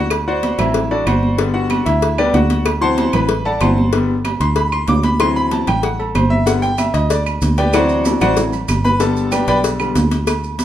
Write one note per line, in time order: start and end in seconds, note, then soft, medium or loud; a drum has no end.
0.00 0.53 D2 loud
0.10 cowbell loud
0.10 high conga soft
0.10 low agogo loud
0.10 claves medium
0.28 0.57 F#4 medium
0.28 0.57 C5 medium
0.28 0.57 D5 medium
0.28 0.57 F#5 medium
0.28 high conga soft
0.43 cowbell medium
0.43 high conga loud
0.43 low agogo medium
0.58 1.03 A1 medium
0.58 0.80 E3 medium
0.58 0.80 F#3 soft
0.58 0.80 C4 medium
0.58 0.89 E4 medium
0.58 0.89 E5 medium
0.58 cowbell medium
0.58 high conga soft
0.58 low conga medium
0.58 low agogo loud
0.58 claves medium
0.74 cowbell loud
0.74 high conga soft
0.74 low conga medium
0.91 1.07 D4 medium
0.91 1.05 F#4 medium
0.91 1.06 A4 medium
0.91 1.05 D5 medium
0.91 high conga soft
0.91 low agogo medium
1.06 1.81 G1 medium
1.06 1.37 F#4 medium
1.06 1.36 C5 medium
1.06 1.37 D5 medium
1.06 1.36 F#5 medium
1.06 cowbell medium
1.06 high conga medium
1.06 low agogo loud
1.06 claves medium
1.23 high conga medium
1.38 1.84 D3 medium
1.38 1.84 G3 medium
1.38 1.84 B3 medium
1.38 cowbell loud
1.38 low agogo medium
1.54 1.84 F#4 medium
1.54 1.84 F#5 medium
1.54 high conga soft
1.70 cowbell medium
1.70 high conga medium
1.70 low agogo loud
1.70 claves medium
1.86 2.31 D2 medium
1.86 2.16 E4 medium
1.86 2.16 E5 medium
1.86 cowbell medium
1.86 high conga soft
1.86 low agogo medium
2.02 cowbell loud
2.02 low agogo medium
2.18 2.33 D3 soft
2.18 2.33 G3 soft
2.18 2.33 B3 medium
2.18 2.34 D4 medium
2.18 2.34 G4 medium
2.18 2.34 B4 medium
2.18 2.34 D5 medium
2.18 high conga soft
2.18 low agogo loud
2.18 claves medium
2.34 3.08 D2 loud
2.34 2.64 F#4 medium
2.34 2.64 F#5 medium
2.34 cowbell medium
2.34 high conga medium
2.34 low timbale medium
2.50 cowbell medium
2.50 high conga medium
2.50 low agogo medium
2.66 cowbell loud
2.66 high conga soft
2.66 low agogo loud
2.66 claves medium
2.81 3.27 E3 medium
2.81 3.27 F#3 medium
2.81 3.27 C4 medium
2.81 3.11 C5 medium
2.81 3.11 F#5 medium
2.81 3.11 A5 medium
2.81 3.11 C6 loud
2.81 high conga soft
2.98 cowbell medium
2.98 high conga medium
2.98 low agogo medium
3.13 3.58 A1 medium
3.13 3.44 B4 medium
3.13 3.44 B5 medium
3.13 cowbell medium
3.13 high conga soft
3.13 low conga medium
3.13 low agogo loud
3.13 claves medium
3.29 cowbell loud
3.29 high conga soft
3.29 low conga medium
3.45 3.61 A4 medium
3.45 3.61 D5 medium
3.45 3.60 F#5 medium
3.45 3.60 A5 medium
3.45 high conga soft
3.45 low agogo medium
3.61 4.35 G1 loud
3.61 3.75 E3 soft
3.61 3.76 F#3 soft
3.61 3.76 C4 medium
3.61 3.91 C5 medium
3.61 3.91 F#5 medium
3.61 3.91 A5 medium
3.61 3.91 C6 medium
3.61 cowbell medium
3.61 high conga loud
3.61 low agogo loud
3.61 claves medium
3.78 high conga medium
3.93 4.14 D3 medium
3.93 4.14 G3 medium
3.93 4.14 B3 medium
3.93 cowbell loud
3.93 low agogo medium
4.10 high conga soft
4.25 cowbell medium
4.25 high conga medium
4.25 low agogo loud
4.25 claves medium
4.40 4.85 D2 medium
4.40 4.56 C6 medium
4.40 cowbell medium
4.40 high conga soft
4.40 low agogo medium
4.56 4.72 B5 medium
4.56 cowbell loud
4.56 high conga soft
4.56 low agogo medium
4.72 4.88 C6 medium
4.72 high conga soft
4.72 low agogo loud
4.72 claves medium
4.88 5.62 D2 loud
4.88 5.04 D6 loud
4.88 cowbell medium
4.88 high conga medium
4.88 low timbale medium
5.03 5.20 B5 loud
5.03 cowbell medium
5.03 high conga medium
5.03 low agogo medium
5.19 5.65 E3 medium
5.19 5.65 F#3 medium
5.19 5.66 C4 medium
5.19 5.35 C6 loud
5.19 cowbell loud
5.19 high conga soft
5.19 low agogo loud
5.19 claves medium
5.36 5.51 B5 loud
5.36 high conga soft
5.51 5.67 A5 medium
5.51 cowbell medium
5.51 high conga medium
5.51 low agogo medium
5.67 6.12 A1 medium
5.67 5.83 G5 medium
5.67 cowbell medium
5.67 high conga soft
5.67 low conga medium
5.67 low agogo loud
5.67 claves medium
5.83 5.99 F#5 medium
5.83 cowbell loud
5.83 high conga soft
5.99 6.15 A4 medium
5.99 high conga soft
5.99 low agogo medium
6.15 6.89 G1 loud
6.15 6.31 C5 medium
6.15 cowbell medium
6.15 high conga medium
6.15 low agogo loud
6.15 claves medium
6.30 6.46 E5 medium
6.30 high conga medium
6.46 6.67 D3 medium
6.46 6.68 G3 medium
6.46 6.68 B3 medium
6.46 6.62 F#5 medium
6.46 cowbell loud
6.46 high conga soft
6.46 low agogo medium
6.46 maracas medium
6.62 6.78 G5 loud
6.62 high conga soft
6.62 maracas soft
6.78 6.94 E5 medium
6.78 cowbell medium
6.78 high conga medium
6.78 low agogo loud
6.78 claves medium
6.78 maracas medium
6.94 7.38 D2 loud
6.94 7.09 D#5 medium
6.94 cowbell medium
6.94 high conga soft
6.94 low agogo medium
6.94 maracas soft
7.10 7.20 D5 medium
7.10 cowbell loud
7.10 high conga soft
7.10 low agogo medium
7.10 maracas medium
7.26 high conga soft
7.26 low agogo loud
7.26 claves medium
7.26 maracas soft
7.41 8.16 D2 loud
7.41 cowbell medium
7.41 high conga medium
7.41 maracas medium
7.57 7.73 G4 medium
7.57 7.74 B4 medium
7.57 7.73 D5 medium
7.57 7.73 G5 medium
7.57 cowbell medium
7.57 high conga medium
7.57 low agogo medium
7.57 maracas soft
7.73 8.36 E3 medium
7.73 8.36 F#3 medium
7.73 8.37 C4 medium
7.73 8.04 F#4 medium
7.73 8.04 C5 medium
7.73 8.04 D5 medium
7.73 8.03 F#5 medium
7.73 cowbell loud
7.73 high conga soft
7.73 low agogo loud
7.73 claves medium
7.73 maracas medium
7.89 high conga soft
7.89 maracas soft
8.05 8.21 D4 soft
8.05 8.20 F#4 soft
8.05 8.21 A4 soft
8.05 8.20 D5 medium
8.05 cowbell medium
8.05 high conga medium
8.05 low agogo medium
8.05 maracas medium
8.20 8.66 A1 medium
8.20 8.37 F#4 medium
8.20 8.37 C5 medium
8.20 8.37 D5 medium
8.20 8.37 F#5 loud
8.20 cowbell medium
8.20 high conga soft
8.20 low conga medium
8.20 low agogo loud
8.20 claves medium
8.20 maracas soft
8.37 8.51 E3 soft
8.37 8.52 F#3 soft
8.37 8.52 C4 medium
8.37 cowbell loud
8.37 high conga soft
8.37 low conga medium
8.37 maracas medium
8.53 high conga soft
8.53 low agogo medium
8.53 maracas soft
8.68 9.42 G1 medium
8.68 cowbell medium
8.68 high conga medium
8.68 low agogo loud
8.68 claves medium
8.68 maracas medium
8.85 9.00 B4 medium
8.85 9.00 B5 loud
8.85 high conga medium
8.85 maracas soft
9.00 9.78 D3 medium
9.00 9.79 G3 medium
9.00 9.79 B3 medium
9.00 9.30 A4 medium
9.00 9.30 A5 medium
9.00 cowbell loud
9.00 high conga soft
9.00 low agogo medium
9.00 maracas medium
9.16 high conga soft
9.16 maracas soft
9.32 9.48 G4 medium
9.32 9.47 B4 medium
9.32 9.47 D5 medium
9.32 9.47 G5 medium
9.32 cowbell medium
9.32 high conga medium
9.32 low agogo loud
9.32 claves medium
9.32 maracas medium
9.48 9.92 B1 medium
9.48 9.58 B4 medium
9.48 9.58 D5 medium
9.48 9.58 G5 medium
9.48 9.57 B5 loud
9.48 cowbell medium
9.48 high conga soft
9.48 low agogo medium
9.48 maracas soft
9.64 cowbell loud
9.64 high conga soft
9.64 low agogo medium
9.64 maracas medium
9.79 9.94 D3 medium
9.79 9.94 G3 soft
9.79 9.94 B3 medium
9.79 high conga soft
9.79 low agogo loud
9.79 claves medium
9.79 maracas soft
9.95 10.65 D2 medium
9.95 cowbell medium
9.95 high conga medium
9.95 low timbale medium
9.95 maracas medium
10.11 cowbell medium
10.11 high conga medium
10.11 low agogo medium
10.11 maracas soft
10.27 cowbell loud
10.27 high conga soft
10.27 low agogo loud
10.27 claves medium
10.27 maracas medium
10.44 high conga soft
10.44 maracas soft
10.59 cowbell medium
10.59 high conga loud
10.59 low agogo medium
10.59 maracas medium